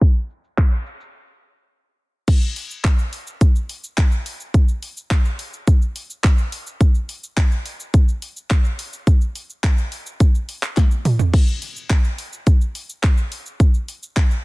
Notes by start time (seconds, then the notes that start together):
0.01 kick, shaker
0.16 shaker
0.30 shaker
0.44 shaker
0.58 kick, clap, shaker
0.72 shaker
0.86 shaker
1.00 shaker
2.28 kick, closed hi-hat, crash, shaker
2.42 shaker
2.56 open hi-hat, shaker
2.71 shaker
2.85 kick, clap, closed hi-hat, shaker
2.99 shaker
3.13 open hi-hat, shaker
3.27 shaker
3.41 kick, closed hi-hat, shaker
3.56 shaker
3.69 open hi-hat, shaker
3.84 shaker
3.98 kick, clap, closed hi-hat, shaker
4.12 shaker
4.26 open hi-hat, shaker
4.40 shaker
4.54 kick, closed hi-hat, shaker
4.68 shaker
4.83 open hi-hat, shaker
4.97 shaker
5.11 kick, clap, closed hi-hat, shaker
5.25 shaker
5.39 open hi-hat, shaker
5.53 shaker
5.67 kick, closed hi-hat, shaker
5.82 shaker
5.96 open hi-hat, shaker
6.10 shaker
6.24 kick, clap, closed hi-hat, shaker
6.38 shaker
6.52 open hi-hat, shaker
6.67 shaker
6.81 kick, closed hi-hat, shaker
6.95 shaker
7.09 open hi-hat, shaker
7.23 shaker
7.37 kick, clap, closed hi-hat, shaker
7.52 shaker
7.66 open hi-hat, shaker
7.80 shaker
7.94 kick, closed hi-hat, shaker
8.08 shaker
8.22 open hi-hat, shaker
8.37 shaker
8.50 kick, clap, closed hi-hat, shaker
8.65 shaker
8.79 open hi-hat, shaker
8.93 shaker
9.07 kick, closed hi-hat, shaker
9.21 shaker
9.35 open hi-hat, shaker
9.50 shaker
9.64 kick, clap, closed hi-hat, shaker
9.78 shaker
9.92 open hi-hat, shaker
10.06 shaker
10.20 kick, closed hi-hat, shaker
10.35 shaker
10.49 open hi-hat, shaker
10.63 clap, shaker
10.77 kick, clap, closed hi-hat, high tom, shaker
10.91 shaker
11.05 mid tom, open hi-hat, shaker
11.19 floor tom, shaker
11.34 kick, crash
11.48 shaker
11.62 open hi-hat, shaker
11.76 shaker
11.90 kick, clap, closed hi-hat, shaker
12.04 shaker
12.18 open hi-hat, shaker
12.33 shaker
12.47 kick, closed hi-hat, shaker
12.61 shaker
12.75 open hi-hat, shaker
12.89 shaker
13.03 kick, clap, closed hi-hat, shaker
13.17 shaker
13.32 open hi-hat, shaker
13.46 shaker
13.60 kick, closed hi-hat, shaker
13.74 shaker
13.88 open hi-hat, shaker
14.03 shaker
14.17 kick, clap, closed hi-hat, shaker
14.31 shaker